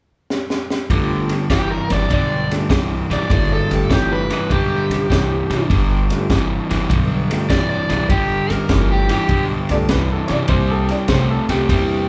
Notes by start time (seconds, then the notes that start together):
0.30 snare
0.50 snare
0.70 snare
0.90 G1 G2 D3 A3 B3 D4 F4 G4, kick, ride
1.29 snare, ride
1.50 G1 G2 E3 G4, kick, snare, ride
1.71 A#4
1.90 G1 G2 E3 D5, snare, ride
2.10 B1 G2 D3 D5, kick, ride
2.50 A3 B3 D4 F4 A4, snare, ride
2.69 B1 G2 E3, kick, snare, ride
3.10 B1 G2 E3 D5, snare, ride
3.30 G1 G2 D3 G#3 A#3 C#4 E4 F#4, kick, ride
3.53 A4
3.70 G1 A3 B3 D4 F4 G4, snare, ride
3.90 G1 G2 E3 G4, kick, snare, ride
4.12 B4
4.30 G2 E3, snare, ride
4.50 B1 G2 D3 G4, kick, ride
4.90 B1, snare, ride
5.10 C2 G2 E3, kick, snare, ride
5.50 C2 G2 E3, snare, ride
5.70 G1 G2 D3, kick, snare, ride
6.10 A3 B3 D4 F4 G4, snare, ride
6.30 G1 G2 E3, kick, snare, ride
6.69 G1 G2 E3, snare, ride
6.89 B1 G2 D3, kick, ride
7.30 A3 B3 D4 F4 G4, snare, ride
7.50 B1 G2 E3 D5, kick, snare, ride
7.70 D5
7.89 B1 G2 E3, snare, ride
8.09 G1 G2 D3 G4, kick, ride
8.50 G1 A#4, snare, ride
8.69 G1 G2 E3 A3 B3 D4 F4 G4, kick, snare, ride
8.92 G4
9.09 G2 E3 G4, snare, ride
9.29 B1 G2 D3, kick, ride
9.69 B1 A3 B3 D4 F4 A4 D5, snare, ride
9.89 C2 G2 E3 B4, kick, snare, ride
10.12 A4
10.27 C2 G2 E3 C#5, snare, ride
10.32 D5
10.48 C2 C3 G3 A#3 C4 D4 E4 G4 C5, kick, ride
10.71 A4
10.88 D5, snare, ride
11.08 C2 C3 A3 C5, kick, snare, ride
11.30 A4
11.49 C2 C3 A3 G4, snare, ride
11.69 E2 C3 G3 A#3 C4 D4 E4 G4, kick, snare, ride